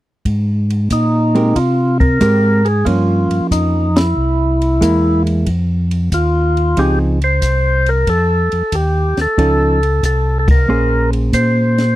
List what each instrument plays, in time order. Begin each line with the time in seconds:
0.25 tonewheel organ G#2, kick, ride
0.70 ride
0.90 tonewheel organ A#2 D#4, kick, hi-hat pedal, ride
1.35 hollow-body jazz guitar G#3 C4 G4 A#4, ride
1.56 tonewheel organ C3 F4, kick, ride
2.00 tonewheel organ A#4, kick, ride
2.21 tonewheel organ G#2, hollow-body jazz guitar G#3 C4 G4 A#4, kick, hi-hat pedal, ride
2.65 tonewheel organ G#4, ride
2.85 tonewheel organ G2 F4, hollow-body jazz guitar F3 A#3 C#4, kick, ride
3.31 tonewheel organ G2, ride
3.51 tonewheel organ F2 D#4, kick, hi-hat pedal, ride
3.96 tonewheel organ E4, snare, ride
4.17 tonewheel organ C2
4.62 ride
4.81 tonewheel organ E2, hollow-body jazz guitar G#3 A#3 E4, kick, hi-hat pedal, ride
5.27 ride
5.46 tonewheel organ F2, kick, ride
5.91 ride
6.12 tonewheel organ D#2 F4, kick, hi-hat pedal, ride
6.57 ride
6.77 tonewheel organ C#2 G4, hollow-body jazz guitar F3 C4 D#4 G#4, kick, ride
7.22 tonewheel organ C5, ride
7.42 tonewheel organ C2, kick, hi-hat pedal, ride
7.86 tonewheel organ A#4, ride
8.07 tonewheel organ F2 A4, kick, ride
8.52 tonewheel organ F2, ride
8.72 tonewheel organ D#2 G4, kick, hi-hat pedal, ride
9.17 tonewheel organ D#2, snare, ride
9.21 tonewheel organ A4
9.37 tonewheel organ C#2, hollow-body jazz guitar F3 C#4 D#4 A4, kick, ride
9.83 ride
10.03 tonewheel organ C2 A4, kick, hi-hat pedal, ride
10.39 tonewheel organ A4
10.48 tonewheel organ A#4, kick, ride
10.68 tonewheel organ A#1, hollow-body jazz guitar A#3 C#4 G#4 C5
11.13 ride
11.33 tonewheel organ A#2 C5, kick, hi-hat pedal, ride
11.78 snare, ride